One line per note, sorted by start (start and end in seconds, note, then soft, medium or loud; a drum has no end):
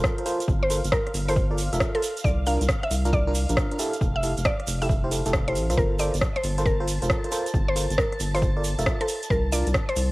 0.00 0.15 F4 medium
0.00 0.15 A4 medium
0.00 0.15 A#4 medium
0.00 0.15 C5 medium
0.00 5.79 F5 medium
0.00 kick loud
0.00 cross-stick loud
0.18 0.25 F4 medium
0.18 0.25 A4 medium
0.18 0.25 A#4 medium
0.18 0.25 C5 medium
0.18 closed hi-hat soft
0.26 0.40 F4 loud
0.26 0.40 A4 medium
0.26 0.40 A#4 medium
0.26 0.40 C5 loud
0.26 open hi-hat loud
0.26 shaker medium
0.40 closed hi-hat medium
0.40 shaker medium
0.48 0.81 G1 loud
0.48 kick loud
0.63 0.81 C5 loud
0.70 0.79 F4 medium
0.70 0.79 A4 medium
0.70 0.79 A#4 medium
0.70 0.79 C5 loud
0.70 open hi-hat loud
0.70 shaker loud
0.85 0.91 G1 medium
0.85 closed hi-hat medium
0.85 shaker medium
0.92 1.12 A#4 loud
0.92 kick loud
0.92 cross-stick loud
1.07 cross-stick soft
1.07 closed hi-hat soft
1.14 1.69 G1 loud
1.14 open hi-hat loud
1.14 shaker medium
1.28 1.33 F4 loud
1.28 1.33 A4 medium
1.28 1.33 A#4 medium
1.28 1.47 C5 medium
1.28 1.33 C5 loud
1.28 open hi-hat medium
1.28 shaker medium
1.36 kick loud
1.36 shaker soft
1.51 1.57 F4 medium
1.51 1.57 A4 medium
1.51 1.57 A#4 medium
1.51 1.57 D5 medium
1.58 open hi-hat loud
1.58 shaker medium
1.73 1.79 F1 loud
1.73 1.91 F4 medium
1.73 1.91 A4 medium
1.73 1.91 A#4 medium
1.73 1.91 E5 loud
1.73 closed hi-hat medium
1.73 shaker medium
1.80 kick loud
1.80 cross-stick loud
1.80 shaker soft
1.95 1.99 F4 medium
1.95 2.13 A4 medium
1.95 1.99 A4 medium
1.95 1.99 A#4 medium
1.95 1.99 C5 medium
1.95 closed hi-hat soft
2.02 open hi-hat loud
2.02 shaker medium
2.17 closed hi-hat medium
2.17 shaker medium
2.24 2.58 C2 loud
2.24 2.40 D5 loud
2.24 kick loud
2.46 2.60 D4 loud
2.46 2.60 F4 medium
2.46 2.60 A#4 loud
2.46 2.67 F5 loud
2.46 open hi-hat loud
2.46 shaker medium
2.61 2.67 C2 medium
2.61 closed hi-hat medium
2.61 shaker medium
2.69 kick loud
2.69 cross-stick loud
2.69 shaker soft
2.83 3.01 E5 loud
2.83 cross-stick soft
2.83 closed hi-hat soft
2.91 3.46 C2 loud
2.91 open hi-hat loud
2.91 shaker medium
3.05 3.10 D4 loud
3.05 3.10 F4 medium
3.05 3.10 A#4 loud
3.05 closed hi-hat medium
3.05 shaker soft
3.13 3.39 D5 loud
3.13 kick loud
3.13 shaker soft
3.27 3.32 D4 loud
3.27 3.32 F4 medium
3.27 3.32 A#4 loud
3.35 open hi-hat loud
3.35 shaker loud
3.49 3.56 A#1 medium
3.49 3.68 D4 medium
3.49 3.68 F4 medium
3.49 3.68 A#4 medium
3.49 closed hi-hat medium
3.49 shaker medium
3.57 kick loud
3.57 cross-stick loud
3.57 shaker soft
3.71 3.78 D4 medium
3.71 3.78 F4 medium
3.71 3.78 A#4 medium
3.71 closed hi-hat medium
3.79 3.93 E4 loud
3.79 3.93 G4 medium
3.79 3.93 A4 loud
3.79 open hi-hat loud
3.79 shaker medium
3.93 closed hi-hat medium
3.93 shaker medium
4.01 4.34 F1 loud
4.01 kick loud
4.01 shaker soft
4.16 4.34 E5 medium
4.23 4.32 E4 medium
4.23 4.32 G4 medium
4.23 4.32 A4 medium
4.23 open hi-hat loud
4.23 shaker loud
4.37 4.44 F1 medium
4.37 closed hi-hat medium
4.37 shaker medium
4.45 4.65 D5 loud
4.45 kick loud
4.45 cross-stick loud
4.45 shaker soft
4.60 cross-stick soft
4.60 closed hi-hat soft
4.67 5.22 F1 loud
4.67 open hi-hat loud
4.67 shaker medium
4.81 4.86 E4 loud
4.81 4.86 G4 medium
4.81 4.86 A4 loud
4.81 5.00 E5 loud
4.81 open hi-hat medium
4.81 shaker medium
4.89 kick loud
4.89 shaker soft
5.04 5.10 E4 medium
5.04 5.10 G4 medium
5.04 5.10 C5 medium
5.11 5.20 E4 medium
5.11 5.20 G4 medium
5.11 5.20 A4 loud
5.11 open hi-hat loud
5.11 shaker loud
5.26 5.57 F1 medium
5.26 5.33 E4 loud
5.26 5.33 G4 medium
5.26 5.33 A4 loud
5.26 closed hi-hat medium
5.26 shaker medium
5.33 kick loud
5.33 cross-stick loud
5.48 5.66 E4 medium
5.48 5.67 G4 medium
5.48 5.66 A4 medium
5.48 5.66 C5 medium
5.48 closed hi-hat soft
5.55 5.72 A1 medium
5.55 open hi-hat loud
5.55 shaker medium
5.70 5.76 C2 medium
5.70 5.98 F4 medium
5.70 5.98 A4 medium
5.70 5.98 A#4 medium
5.70 5.98 C5 medium
5.70 cross-stick soft
5.70 closed hi-hat medium
5.70 shaker medium
5.77 6.10 G1 loud
5.77 5.93 A#4 loud
5.77 10.12 A5 medium
5.77 kick loud
5.99 6.13 F4 loud
5.99 6.13 A4 medium
5.99 6.13 A#4 medium
5.99 6.13 C5 loud
5.99 6.19 D5 loud
5.99 open hi-hat loud
5.99 shaker loud
6.14 6.20 G1 medium
6.14 closed hi-hat medium
6.14 shaker soft
6.21 kick loud
6.21 cross-stick loud
6.36 6.54 C5 loud
6.36 cross-stick soft
6.36 closed hi-hat soft
6.43 6.99 G1 loud
6.43 open hi-hat loud
6.43 shaker medium
6.58 6.63 F4 loud
6.58 6.63 A4 medium
6.58 6.63 A#4 medium
6.58 6.63 C5 loud
6.58 closed hi-hat medium
6.58 shaker soft
6.66 6.92 A#4 loud
6.66 kick loud
6.66 shaker soft
6.80 6.85 F4 loud
6.80 6.85 A4 medium
6.80 6.85 A#4 medium
6.80 6.85 C5 loud
6.88 open hi-hat loud
6.88 shaker medium
7.02 7.09 F1 medium
7.02 7.21 F4 medium
7.02 7.21 A4 medium
7.02 7.21 A#4 medium
7.02 7.21 C5 medium
7.02 closed hi-hat medium
7.02 shaker soft
7.10 kick loud
7.10 cross-stick loud
7.24 7.31 F4 medium
7.24 7.31 A4 medium
7.24 7.31 A#4 medium
7.24 7.31 C5 medium
7.24 closed hi-hat medium
7.32 7.45 F4 loud
7.32 7.45 A4 medium
7.32 7.45 A#4 medium
7.32 7.45 C5 loud
7.32 open hi-hat loud
7.32 shaker medium
7.46 closed hi-hat medium
7.46 shaker medium
7.54 7.87 G1 loud
7.54 kick loud
7.68 7.86 C5 loud
7.76 7.84 F4 medium
7.76 7.84 A4 medium
7.76 7.84 A#4 medium
7.76 7.84 C5 medium
7.76 open hi-hat loud
7.76 shaker loud
7.90 7.97 G1 medium
7.90 closed hi-hat medium
7.90 shaker soft
7.98 8.18 A#4 loud
7.98 kick loud
7.98 cross-stick loud
8.12 cross-stick soft
8.12 closed hi-hat soft
8.20 8.75 G1 loud
8.20 open hi-hat loud
8.20 shaker medium
8.34 8.39 F4 loud
8.34 8.39 A4 medium
8.34 8.39 A#4 medium
8.34 8.39 C5 loud
8.34 8.53 C5 loud
8.34 open hi-hat medium
8.34 shaker soft
8.42 kick loud
8.42 shaker soft
8.57 8.62 F4 medium
8.57 8.62 A4 medium
8.57 8.62 A#4 medium
8.57 8.62 D5 loud
8.64 open hi-hat loud
8.64 shaker medium
8.78 8.85 F1 medium
8.78 8.97 F4 medium
8.78 8.97 A4 medium
8.78 8.97 A#4 medium
8.78 8.97 E5 loud
8.78 closed hi-hat medium
8.78 shaker medium
8.86 kick loud
8.86 cross-stick loud
9.01 9.05 F4 medium
9.01 9.19 A4 medium
9.01 9.05 A4 medium
9.01 9.05 A#4 medium
9.01 9.05 C5 medium
9.01 closed hi-hat medium
9.08 open hi-hat loud
9.08 shaker medium
9.23 closed hi-hat medium
9.23 shaker soft
9.30 9.63 C2 loud
9.30 9.46 A#4 loud
9.30 kick loud
9.52 9.66 D4 loud
9.52 9.66 F4 medium
9.52 9.66 A#4 loud
9.52 9.72 D5 loud
9.52 open hi-hat loud
9.52 shaker loud
9.67 9.73 C2 medium
9.67 closed hi-hat medium
9.67 shaker soft
9.74 kick loud
9.74 cross-stick loud
9.74 shaker soft
9.89 10.07 C5 loud
9.89 cross-stick soft
9.89 closed hi-hat soft
9.96 10.12 C2 loud
9.96 open hi-hat loud
9.96 shaker medium